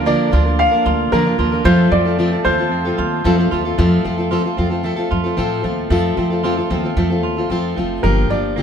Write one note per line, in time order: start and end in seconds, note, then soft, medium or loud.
0.00 0.12 D2 loud
0.00 1.64 D3 medium
0.00 3.03 F3 medium
0.00 1.62 A#3 medium
0.00 0.58 D4 medium
0.00 0.32 F4 medium
0.00 1.64 F4 medium
0.05 0.32 D3 medium
0.05 0.30 F3 medium
0.05 1.11 A#3 medium
0.05 0.32 A#3 medium
0.05 0.32 D4 medium
0.05 0.33 A#4 medium
0.05 0.61 D5 medium
0.32 0.65 D2 medium
0.32 0.45 F3 medium
0.32 0.46 A#3 medium
0.32 0.45 D4 medium
0.32 0.85 F4 medium
0.32 0.44 A#4 medium
0.45 0.73 A#3 soft
0.45 0.72 D4 soft
0.45 0.70 A#4 soft
0.59 1.71 D4 medium
0.59 1.14 F5 medium
0.71 1.12 A#3 soft
0.71 1.12 D4 soft
0.71 1.12 A#4 medium
0.85 1.08 D2 medium
0.85 1.39 F4 medium
1.12 1.34 F2 medium
1.12 1.26 D3 medium
1.12 1.26 F3 medium
1.12 1.65 A#3 medium
1.12 1.26 A#3 medium
1.12 1.25 D4 medium
1.12 1.67 A#4 medium
1.12 1.24 A#4 medium
1.25 1.38 A#3 soft
1.25 1.38 D4 medium
1.25 1.38 A#4 medium
1.38 1.61 D#2 medium
1.38 1.52 F3 medium
1.38 1.52 A#3 medium
1.38 1.52 D4 medium
1.38 1.66 F4 medium
1.38 1.51 A#4 medium
1.52 1.65 A#3 soft
1.52 1.65 D4 soft
1.52 1.65 A#4 medium
1.64 1.87 F2 loud
1.64 2.05 F3 medium
1.64 3.76 F3 medium
1.64 2.18 A3 medium
1.64 2.05 C4 medium
1.64 3.76 C4 medium
1.64 2.05 F4 medium
1.64 2.45 F4 medium
1.64 3.76 A4 medium
1.64 2.04 A4 medium
1.64 1.90 C5 medium
1.92 2.35 F2 medium
1.92 2.71 C4 medium
1.92 2.46 D5 medium
2.05 2.18 C4 soft
2.05 2.19 F4 soft
2.05 2.19 A4 medium
2.19 2.32 F3 medium
2.19 3.24 A3 medium
2.19 2.32 C4 medium
2.19 2.32 F4 medium
2.19 2.30 A4 medium
2.32 2.45 C4 soft
2.32 2.45 F4 soft
2.32 2.45 A4 soft
2.45 2.71 D#2 medium
2.45 2.58 F3 medium
2.45 2.59 C4 medium
2.45 2.98 F4 medium
2.45 2.59 F4 medium
2.45 2.57 A4 medium
2.45 3.47 C5 medium
2.58 2.86 C4 soft
2.58 2.85 F4 soft
2.58 2.84 A4 soft
2.71 2.93 F2 loud
2.71 4.04 C4 medium
2.85 3.24 C4 soft
2.85 3.25 F4 soft
2.85 3.25 A4 medium
2.98 3.20 D#2 medium
2.98 3.51 F4 medium
3.24 3.47 F2 loud
3.24 3.38 F3 medium
3.24 3.77 A3 medium
3.24 3.38 C4 medium
3.24 3.39 F4 medium
3.24 3.37 A4 medium
3.38 3.51 C4 medium
3.38 3.52 F4 medium
3.38 3.51 A4 medium
3.51 3.74 D#2 medium
3.51 3.65 F3 medium
3.51 3.65 C4 medium
3.51 4.31 F4 medium
3.51 3.65 F4 medium
3.51 3.64 A4 medium
3.65 3.78 C4 soft
3.65 3.78 F4 medium
3.65 3.78 A4 medium
3.78 4.00 F2 loud
3.78 4.03 F3 medium
3.78 4.83 A3 medium
3.78 4.04 C4 medium
3.78 4.05 F4 medium
3.78 4.05 A4 medium
4.04 4.38 F2 medium
4.04 4.18 F3 medium
4.04 4.56 C4 medium
4.04 4.18 C4 medium
4.04 4.18 F4 medium
4.04 4.16 A4 medium
4.18 4.31 C4 soft
4.18 4.31 F4 soft
4.18 4.31 A4 soft
4.31 4.44 F3 medium
4.31 4.45 C4 medium
4.31 5.10 F4 medium
4.31 4.44 F4 medium
4.31 4.43 A4 medium
4.44 4.57 C4 soft
4.44 4.58 F4 soft
4.44 4.58 A4 soft
4.57 4.91 F2 medium
4.57 4.71 F3 medium
4.57 5.36 C4 medium
4.57 4.71 C4 medium
4.57 4.70 F4 medium
4.57 4.69 A4 medium
4.70 4.83 C4 soft
4.70 4.84 F4 soft
4.70 4.84 A4 soft
4.83 4.97 F3 medium
4.83 5.63 A3 medium
4.83 4.97 C4 medium
4.83 4.97 F4 medium
4.83 4.95 A4 medium
4.96 5.25 C4 soft
4.96 5.24 F4 medium
4.96 5.23 A4 medium
5.11 5.33 F2 medium
5.11 6.43 F4 medium
5.24 5.36 C4 soft
5.24 5.37 F4 soft
5.24 5.37 A4 medium
5.37 5.60 A2 medium
5.37 5.62 F3 medium
5.37 6.16 C4 medium
5.37 5.63 C4 medium
5.37 5.64 F4 medium
5.37 5.65 A4 medium
5.63 5.86 D#2 medium
5.63 5.89 F3 medium
5.63 5.89 A3 soft
5.63 5.90 C4 medium
5.63 5.91 F4 medium
5.63 5.91 A4 medium
5.90 6.12 F2 medium
5.90 6.16 F3 medium
5.90 6.95 A3 medium
5.90 6.16 C4 medium
5.90 6.18 F4 medium
5.90 6.18 A4 medium
6.17 6.61 F2 medium
6.17 6.30 F3 medium
6.17 6.69 C4 medium
6.17 6.31 C4 medium
6.17 6.31 F4 medium
6.17 6.29 A4 medium
6.30 6.43 C4 soft
6.30 6.44 F4 soft
6.30 6.44 A4 medium
6.43 6.57 F3 medium
6.43 6.57 C4 medium
6.43 7.23 F4 medium
6.43 6.57 F4 medium
6.43 6.56 A4 medium
6.57 6.70 C4 soft
6.57 6.70 F4 soft
6.57 6.70 A4 soft
6.70 6.92 D#2 medium
6.70 6.84 F3 medium
6.70 7.49 C4 medium
6.70 6.84 C4 medium
6.70 6.84 F4 medium
6.70 6.82 A4 medium
6.83 6.97 C4 soft
6.83 6.97 F4 soft
6.83 6.97 A4 soft
6.97 7.24 F2 medium
6.97 7.10 F3 medium
6.97 7.75 A3 medium
6.97 7.11 C4 medium
6.97 7.10 F4 medium
6.97 7.09 A4 medium
7.10 7.38 C4 soft
7.10 7.37 F4 soft
7.10 7.36 A4 medium
7.23 7.45 D#2 medium
7.23 8.62 F4 medium
7.37 7.50 C4 soft
7.37 7.50 F4 soft
7.37 7.50 A4 soft
7.50 7.72 F2 medium
7.50 7.75 F3 medium
7.50 8.08 C4 medium
7.50 7.76 C4 medium
7.50 7.77 F4 medium
7.50 7.78 A4 medium
7.76 7.99 F1 medium
7.76 8.03 F3 medium
7.76 8.08 A3 soft
7.76 8.04 C4 medium
7.76 8.04 F4 medium
7.76 8.04 A4 medium
8.03 8.25 G1 loud
8.03 8.30 G2 medium
8.03 8.30 D3 medium
8.03 8.28 F3 medium
8.03 8.29 F3 medium
8.03 8.29 A#3 medium
8.03 8.30 D4 medium
8.03 8.31 G4 medium
8.03 8.30 A#4 medium
8.30 8.62 G1 medium
8.30 8.62 F3 soft
8.30 8.56 F3 soft
8.30 8.57 A#3 soft
8.30 8.57 D4 medium
8.30 8.58 G4 soft
8.30 8.62 D5 medium
8.56 8.62 G2 medium
8.56 8.62 D3 medium
8.56 8.62 F3 medium
8.56 8.62 A#3 medium
8.56 8.62 D4 medium
8.56 8.62 G4 medium